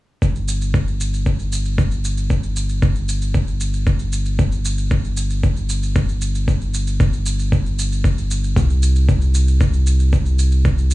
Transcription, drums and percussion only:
0.22 kick medium
0.22 shaker soft
0.36 shaker soft
0.48 shaker medium
0.62 shaker soft
0.74 kick medium
0.74 shaker soft
0.88 shaker soft
1.01 shaker medium
1.14 shaker soft
1.26 kick medium
1.26 shaker soft
1.39 shaker soft
1.52 shaker medium
1.65 shaker soft
1.78 kick medium
1.78 shaker soft
1.91 shaker soft
2.05 shaker medium
2.17 shaker soft
2.30 kick loud
2.30 shaker soft
2.43 shaker soft
2.56 shaker medium
2.69 shaker soft
2.82 kick loud
2.82 shaker soft
2.95 shaker soft
3.09 shaker medium
3.22 shaker soft
3.34 kick medium
3.34 shaker soft
3.48 shaker soft
3.60 shaker medium
3.74 shaker soft
3.87 kick medium
3.87 shaker soft
3.99 shaker soft
4.13 shaker medium
4.26 shaker soft
4.39 kick medium
4.39 shaker soft
4.52 shaker soft
4.65 shaker medium
4.78 shaker soft
4.91 kick loud
4.91 shaker soft
5.05 shaker soft
5.17 shaker medium
5.30 shaker soft
5.43 kick medium
5.43 shaker soft
5.56 shaker soft
5.69 shaker medium
5.83 shaker soft
5.96 kick medium
5.96 shaker soft
6.09 shaker soft
6.21 shaker medium
6.35 shaker soft
6.48 kick loud
6.48 shaker soft
6.61 shaker soft
6.74 shaker medium
6.87 shaker soft
7.00 kick medium
7.00 shaker soft
7.13 shaker soft
7.26 shaker medium
7.39 shaker soft
7.52 kick medium
7.52 shaker soft
7.66 shaker soft
7.79 shaker medium
7.92 shaker soft
8.04 kick medium
8.04 shaker soft
8.18 shaker soft
8.31 shaker medium
8.44 shaker soft
8.56 kick medium
8.56 shaker soft
8.70 shaker soft
8.83 shaker medium
8.96 shaker soft
9.09 kick medium
9.09 shaker soft
9.22 shaker soft
9.34 shaker medium
9.48 shaker soft
9.61 kick medium
9.61 shaker soft
9.74 shaker soft
9.87 shaker medium
10.00 shaker soft
10.13 kick medium
10.13 shaker soft
10.26 shaker soft
10.39 shaker medium
10.52 shaker soft
10.65 kick medium
10.65 shaker soft
10.78 shaker soft
10.91 shaker medium

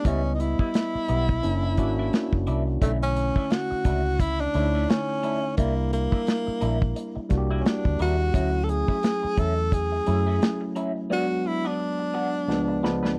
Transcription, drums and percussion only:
0.05 kick medium
0.05 closed hi-hat medium
0.40 closed hi-hat medium
0.59 kick medium
0.74 snare loud
0.74 closed hi-hat medium
1.08 closed hi-hat medium
1.29 kick medium
1.43 closed hi-hat medium
1.77 kick medium
1.77 closed hi-hat medium
2.13 snare medium
2.13 closed hi-hat medium
2.33 kick medium
2.47 closed hi-hat soft
2.82 kick medium
2.82 closed hi-hat medium
3.16 closed hi-hat medium
3.36 kick medium
3.50 snare medium
3.50 closed hi-hat medium
3.85 kick medium
3.85 closed hi-hat medium
4.20 kick medium
4.20 closed hi-hat medium
4.54 snare soft
4.54 closed hi-hat medium
4.90 snare loud
4.90 closed hi-hat medium
5.23 closed hi-hat soft
5.58 kick medium
5.58 closed hi-hat medium
5.93 closed hi-hat medium
6.12 kick medium
6.27 snare medium
6.27 closed hi-hat medium
6.61 closed hi-hat medium
6.82 kick medium
6.96 closed hi-hat medium
7.30 kick medium
7.30 snare soft
7.30 closed hi-hat medium
7.66 snare loud
7.66 closed hi-hat medium
7.85 kick medium
7.99 closed hi-hat soft
8.34 kick loud
8.34 closed hi-hat medium
8.69 closed hi-hat medium
8.88 kick medium
9.03 snare medium
9.03 closed hi-hat medium
9.37 kick medium
9.37 closed hi-hat medium
9.72 kick medium
9.72 closed hi-hat medium
10.06 closed hi-hat medium
10.42 snare loud
10.42 closed hi-hat medium
10.76 closed hi-hat soft
12.50 snare soft
12.85 snare medium
13.05 snare medium

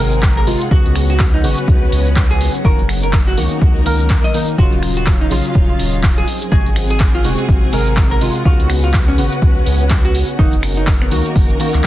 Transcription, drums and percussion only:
0.13 closed hi-hat medium
0.13 cabasa soft
0.22 kick loud
0.22 clap loud
0.22 cabasa soft
0.37 closed hi-hat medium
0.37 cabasa soft
0.47 open hi-hat loud
0.47 cabasa medium
0.61 closed hi-hat medium
0.61 cabasa soft
0.71 kick loud
0.71 cabasa soft
0.86 closed hi-hat medium
0.86 cabasa soft
0.96 finger snap medium
0.96 open hi-hat loud
0.96 cabasa medium
1.10 closed hi-hat medium
1.10 cabasa soft
1.19 kick loud
1.19 clap loud
1.19 cabasa soft
1.34 cabasa soft
1.44 open hi-hat loud
1.44 cabasa medium
1.58 closed hi-hat medium
1.58 cabasa soft
1.68 kick loud
1.68 cabasa soft
1.83 cabasa soft
1.92 open hi-hat loud
1.92 cabasa medium
2.07 closed hi-hat medium
2.07 cabasa soft
2.16 kick loud
2.16 clap loud
2.16 cabasa soft
2.31 closed hi-hat medium
2.31 cabasa soft
2.41 open hi-hat loud
2.41 cabasa medium
2.55 closed hi-hat medium
2.55 cabasa soft
2.65 kick loud
2.65 cabasa soft
2.79 closed hi-hat medium
2.79 cabasa soft
2.89 finger snap medium
2.89 open hi-hat loud
2.89 cabasa medium
3.03 closed hi-hat medium
3.03 cabasa soft
3.13 kick loud
3.13 clap loud
3.13 cabasa soft
3.28 closed hi-hat soft
3.28 cabasa soft
3.38 open hi-hat loud
3.38 cabasa medium
3.52 closed hi-hat medium
3.52 cabasa soft
3.62 kick loud
3.62 cabasa soft
3.76 cabasa soft
3.86 open hi-hat loud
3.86 cabasa medium
4.00 closed hi-hat medium
4.00 cabasa soft
4.10 kick loud
4.10 clap loud
4.10 cabasa soft
4.24 closed hi-hat medium
4.24 cabasa soft
4.34 open hi-hat loud
4.34 cabasa medium
4.49 closed hi-hat medium
4.49 cabasa soft
4.58 kick loud
4.58 cabasa soft
4.73 closed hi-hat medium
4.73 cabasa soft
4.83 finger snap medium
4.83 open hi-hat loud
4.83 cabasa medium
4.97 closed hi-hat medium
4.97 cabasa soft
5.06 kick loud
5.06 clap loud
5.06 cabasa soft
5.21 cabasa soft
5.31 open hi-hat loud
5.31 cabasa medium
5.45 closed hi-hat medium
5.45 cabasa soft
5.55 kick loud
5.55 cabasa soft
5.70 cabasa soft
5.79 open hi-hat loud
5.79 cabasa medium
5.94 closed hi-hat medium
5.94 cabasa soft
6.03 kick loud
6.03 clap loud
6.03 cabasa soft
6.18 closed hi-hat medium
6.18 cabasa soft
6.28 open hi-hat loud
6.28 cabasa medium
6.42 closed hi-hat medium
6.42 cabasa soft
6.52 kick loud
6.52 cabasa soft
6.66 closed hi-hat medium
6.66 cabasa soft
6.76 finger snap medium
6.76 open hi-hat loud
6.76 cabasa medium
6.90 closed hi-hat medium
6.90 cabasa soft
7.00 kick loud
7.00 clap loud
7.00 cabasa soft
7.15 cabasa soft
7.24 open hi-hat loud
7.24 cabasa medium
7.39 closed hi-hat medium
7.39 cabasa soft
7.49 kick loud
7.49 cabasa soft
7.63 cabasa soft
7.73 open hi-hat loud
7.73 cabasa medium
7.87 closed hi-hat medium
7.87 cabasa soft
7.97 kick loud
7.97 clap loud
7.97 cabasa soft
8.11 closed hi-hat medium
8.11 cabasa soft
8.21 open hi-hat loud
8.21 cabasa medium
8.36 closed hi-hat medium
8.36 cabasa soft
8.45 kick loud
8.45 cabasa soft
8.60 closed hi-hat medium
8.60 cabasa soft
8.70 finger snap medium
8.70 open hi-hat loud
8.70 cabasa medium
8.84 closed hi-hat medium
8.84 cabasa soft
8.93 kick loud
8.93 clap loud
8.93 cabasa soft
9.09 cabasa soft
9.18 open hi-hat loud
9.18 cabasa medium
9.32 closed hi-hat medium
9.32 cabasa soft
9.42 kick loud
9.42 cabasa soft
9.57 cabasa soft
9.66 open hi-hat loud
9.66 cabasa medium
9.81 closed hi-hat medium
9.81 cabasa soft
9.90 kick loud
9.90 clap loud
9.90 cabasa soft
10.05 closed hi-hat medium
10.05 cabasa soft
10.15 open hi-hat loud
10.15 cabasa medium
10.29 closed hi-hat medium
10.29 cabasa soft
10.39 kick loud
10.39 cabasa soft
10.53 closed hi-hat medium
10.53 cabasa soft
10.63 finger snap medium
10.63 open hi-hat loud
10.63 cabasa medium
10.77 closed hi-hat medium
10.77 cabasa soft
10.87 kick loud
10.87 clap loud
10.87 cabasa soft
11.02 finger snap medium
11.02 cabasa soft
11.11 open hi-hat loud
11.11 cabasa medium
11.26 closed hi-hat medium
11.26 cabasa soft
11.36 kick loud
11.36 open hi-hat medium
11.36 cabasa soft
11.50 closed hi-hat soft
11.50 cabasa soft
11.60 open hi-hat loud
11.60 cabasa medium
11.74 clap soft
11.74 closed hi-hat medium
11.74 cabasa soft

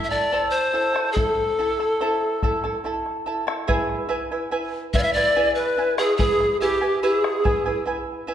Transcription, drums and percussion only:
0.96 bombo rim soft
1.16 bombo low medium
1.80 bombo rim soft
2.00 bombo rim soft
2.43 bombo rim soft
2.43 bombo low medium
2.64 bombo rim soft
2.85 bombo rim soft
3.06 bombo rim soft
3.48 bombo rim medium
3.69 bombo low medium
3.89 bombo rim soft
4.94 bombo low medium
5.98 bombo rim medium
6.19 bombo low medium
6.40 bombo rim soft
7.24 bombo rim soft
7.45 bombo low medium

